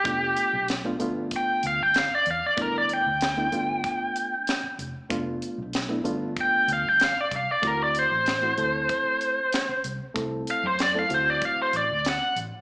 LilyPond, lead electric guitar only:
\new Staff \with { instrumentName = "Lead electric guitar" } { \time 4/4 \key g \mixolydian \tempo 4 = 95 g'4 r4 g''8 f''16 g''16 f''16 d''16 f''16 d''16 | bes'16 d''16 g''2. r8 | r2 g''8 f''16 g''16 f''16 d''16 f''16 d''16 | bes'16 d''16 c''2. r8 |
r8 f''16 c''16 d''16 f''16 c''16 d''16 f''16 c''16 d''8 fis''8 r8 | }